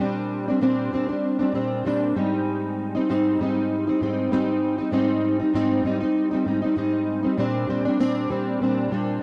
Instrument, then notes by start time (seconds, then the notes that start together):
steel-string acoustic guitar
0.00 A#2 G3 C4 D4
0.48 G3 C4 D4
0.61 A#2 G3 C4 D4
0.91 A#2 G3 C4 D4
1.08 G3 C4 D4
1.39 G3 C4 D4
1.53 A#2 G3 C4 D4
1.85 A#2 G3 C4 D4
2.15 G#2 G3 C4 D#4
2.95 G3 C4 D#4
3.09 G#2 G3 C4 D#4
3.39 G#2 G3 C4 D#4
3.87 G3 C4 D#4
4.01 G#2 G3 C4 D#4
4.31 G#2 G3 C4 D#4
4.78 G3 C4 D#4
4.91 G#2 G3 C4 D#4
5.40 G3 C4 D#4
5.54 G#2 G3 C4 D#4
5.83 G#2 G3 C4 D#4
6.00 G3 C4 D#4
6.31 G3 C4 D#4
6.45 G#2 G3 C4 D#4
6.62 G3 C4 D#4
6.76 G#2 G3 C4 D#4
7.23 G3 C4 D#4
7.38 A#2 G3 C4 D4
7.68 A#2 G3 C4 D4
7.85 G3 C4 D4
7.99 A#2 G3 C4 D4
8.29 A#2 G3 C4 D4
8.60 A#2 G3 C4 D4
8.91 A#2 G3 C4 D4